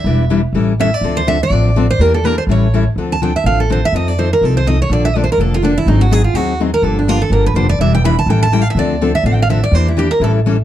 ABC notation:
X:1
M:4/4
L:1/8
Q:"Swing" 1/4=248
K:Dm
V:1 name="Steel-string acoustic guitar"
e3 z3 e d- | d c e d4 c | B A B c ^c3 z | z a g e f A c e |
_e d c B A c e ^c | d e (3d c B A F D E | ^D ^F ^G =F ^F2 z B | A D F A B =B c d |
e g =b a g a (3g f e | d3 e (3f g f e d | c E G B A z3 |]
V:2 name="Steel-string acoustic guitar"
[E,G,DE=B] z [E,G,DEB] z [E,G,^CEA] z [E,G,CEA] z | [D,F,CDA] z [D,F,CDA] z [D,F,CDA] z [D,F,CDA] z | [E,B,DG] z [E,B,DG] z [E,G,^CEA] z [E,G,CEA] z | [D,F,CDA] z [D,F,CDA] z [D,F,CDA] z [D,F,CDA] z |
[F,C_EA] z [F,CEA] z [F,CEA] z [F,CEA] z | [D,F,B,DA] z [D,F,B,DA] z [D,F,B,DA] z [D,F,B,DA] z | [^D,^F,^B,^D^G] z [D,F,B,DG] z [D,F,B,DG] z [D,F,B,DG] z | [D,F,B,DG] z [D,F,B,DG] z [D,F,B,DG] z [D,F,B,DG] z |
[E,G,DE=B] z [E,G,DEB] z [E,G,^CEA] z [E,G,CEA] z | [D,F,CDA] z [D,F,CDA] z [D,F,CDA] z [D,F,CDA] z | [E,B,DG] z [E,B,DG] z [E,G,^CEA] z [E,G,CEA] z |]
V:3 name="Upright bass" clef=bass
E,,,4 A,,,4 | D,,4 A,,,4 | E,,4 A,,,4 | D,,4 A,,,4 |
F,,4 C,,4 | B,,,4 F,,,4 | ^G,,,4 ^D,,4 | G,,,4 G,,,2 F,,,2 |
E,,,4 A,,,4 | D,,4 A,,,4 | E,,4 A,,,4 |]